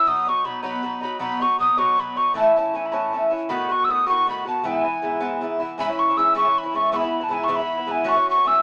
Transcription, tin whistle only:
0.08 D#6
0.29 C#6
0.45 B5
0.64 B5
1.03 B5
1.21 B5
1.42 C#6
1.60 D#6
1.78 C#6
2.00 B5
2.17 C#6
2.37 A5
2.56 A5
2.76 G#5
2.86 B5
2.93 A5
3.49 B5
3.72 C#6
3.85 E6
3.91 D#6
4.09 C#6
4.30 B5
4.48 A5
4.66 G#5
5.80 B5
5.99 C#6
6.17 E6
6.37 C#6
6.58 B5
6.76 C#6
6.93 B5 C#6
7.24 A5
7.33 G#5
7.44 C#6
7.52 B5 C#6
7.91 G#5
8.09 C#6
8.30 C#6
8.48 E6

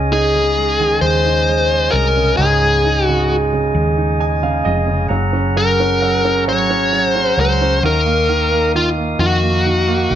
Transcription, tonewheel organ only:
Already playing: G#4 D#5 G#5
5.08 F#5 A#5
7.83 D#4 F5 D#6

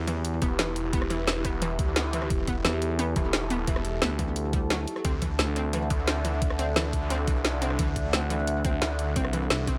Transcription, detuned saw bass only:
0.42 E1
1.79 D2
2.30 E1
3.16 E1
3.67 E1
5.05 D2
5.22 D2
5.90 D2
7.79 D2
7.96 D2
8.82 D2
9.50 C2

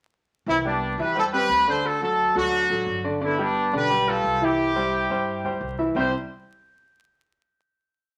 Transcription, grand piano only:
0.48 E3 E4 E5
0.65 G3 G4 D5
0.99 E3 E4 E5
1.15 G3 G4 C5
1.32 G3 C4 G4
1.67 D3 D4 D5
2.01 F#3 F#4 A4
2.35 F#3 F#4 A4
2.70 F#3 F#4 A4
3.04 D3 D4 D5
3.21 D3 D4 D5
3.38 G3 G4 B4
3.73 D3 D4 D5
3.90 G3 G4 B4
4.07 G3 G4 B4
4.41 E3 E4 E5
4.76 G3 G4 C5
5.11 G3 G4 C5
5.45 G3 G4 C5
5.79 E3 E4 E5
5.96 C3 G3 C4 E4 G4 C5

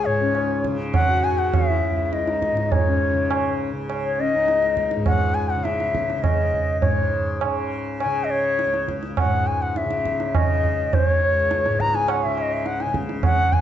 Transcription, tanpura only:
Already playing: C#2 C#3
0.06 G#2
0.68 C#3
1.31 C#3
1.90 C#2
2.52 G#2
3.14 C#3
3.74 C#3
4.35 C#2
4.96 G#2
5.56 C#3
6.17 C#3
6.82 G#2
7.45 C#3
8.06 C#3
8.66 C#2
9.25 G#2
9.85 C#3
10.45 C#3
11.06 C#2
11.66 G#2
12.26 C#3
12.86 C#3
13.46 C#2

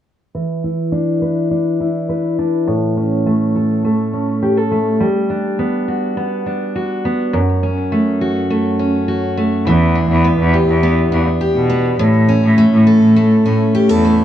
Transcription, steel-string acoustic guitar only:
0.35 E3
0.64 E4
0.92 D4
1.22 B4
1.51 D4
1.80 E4
2.09 B4
2.39 D4
2.67 A2
2.97 C#4
3.26 A3
3.55 A4
3.84 A3
4.13 C#4
4.43 G4
4.57 A4
4.71 A3
5.00 G3
5.30 D4
5.59 B3
5.88 F#4
6.17 B3
6.46 D4
6.76 F#4
7.05 B3
7.33 F#2
7.63 C#4
7.92 A3
8.21 F#4
8.50 A3
8.79 C#4
9.08 F#4
9.37 A3
9.67 E3
9.95 D4
10.24 B3
10.53 G4
10.83 B3
11.12 D4
11.41 G4
11.70 B3
11.99 A2
12.29 C#4
12.58 A3
12.87 A4
13.16 A3
13.46 C#4
13.75 G4
13.89 A4
14.05 A3

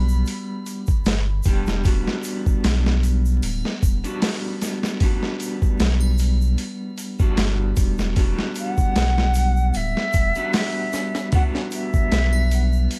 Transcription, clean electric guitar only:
Already playing: G3 B3 D4 F#4
1.46 G3 B3 D4 G4
1.84 G3 B3 D4 F#4
4.04 G3 B3 D4 F#4
5.02 G3 B3 D4 F#4
7.19 G3 B3 D4 F#4
8.17 G3 B3 D4 F#4
10.36 G3 B3 D4 F#4
11.33 G3 B3 D4 F#4

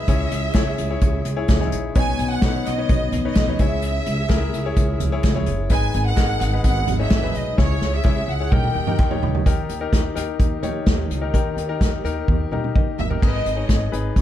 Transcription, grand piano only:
Already playing: D#4 G#4 A#4
0.08 C#3 E4 G#4 C#5
0.55 E4 G#4 C#5
0.90 E4 G#4 C#5
1.36 E4 G#4 C#5
1.60 D#4 G#4 C#5
1.66 E4
1.96 B2 D#4 B4 C#5
2.43 D#4 B4 C#5
2.78 D#4 B4 C#5
3.25 D#4 B4 C#5
3.48 D#4 B4 C#5
3.60 C#3 E4 G#4 C#5
4.29 E4 G#4 A#4
4.65 E4 G#4 C#5
5.12 E4 G#4 C#5
5.36 E4 G#4 C#5
5.71 G#2 D#4 G#4 B4
6.18 D#4 G#4 A#4
6.53 D#4 G#4 B4
6.99 D#4 G#4 C#5
7.23 D#4 G#4 B4
7.57 C#3 E4 G#4 C#5
8.04 E4 G#4 C#5
8.40 E4 G#4 C#5
8.52 D#3 D#4 G4 A#4
8.88 D#4 G4 A#4
9.10 D#4 G4 C#5
9.46 D#3 D#4 G4 A#4
9.81 D#4 G4 A#4
10.15 D#4 G4 A#4
10.63 D#4 G4 C#5
11.21 D#4 G4 A#4
11.34 D#3 D#4 G4 A#4
11.69 D#4 G4 A#4
12.04 D#4 G4 A#4
12.52 D#4 G4 A#4 A#5
12.75 D#5
13.10 D#4 G4 A#4
13.21 G#2 D#4 G#4 A#4
13.27 B4
13.56 D#4 G#4 C#5
13.92 D#4 G#4 B4

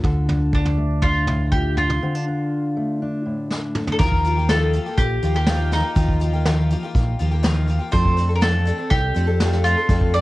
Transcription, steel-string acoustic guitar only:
Already playing: A3 D4 F4
0.03 D3 A4
0.28 D4
0.77 A3
1.04 D4
1.28 A2
1.53 F4
1.78 D4
2.02 D3 C4
2.15 D4
2.28 D4
2.77 A3
3.02 D4
3.26 A2
3.51 D4
3.75 A4

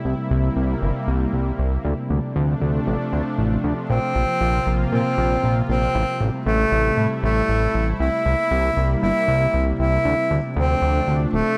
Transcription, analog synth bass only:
0.05 C2
0.31 C2
0.56 C2
0.82 G1
1.08 C2
1.33 C2
1.59 C2
1.85 D2
2.10 D2
2.36 D2
2.61 D2
2.87 A1
3.13 D2
3.38 A1
3.64 D2
3.90 A#1
4.15 A#1
4.41 A#1
4.67 A#1
4.92 A#2
5.18 A#1
5.43 A#1
5.69 A#1
5.95 A1
6.21 A1
6.46 A1
6.72 A1
6.97 A2
7.23 A1
7.49 A1
7.74 A1
8.00 C2
8.26 C2
8.51 C2
8.77 C2
9.03 G1
9.28 C2
9.54 C2
9.79 C2
10.05 D2
10.31 D2
10.56 D2
10.82 D2
11.08 D2
11.33 D1

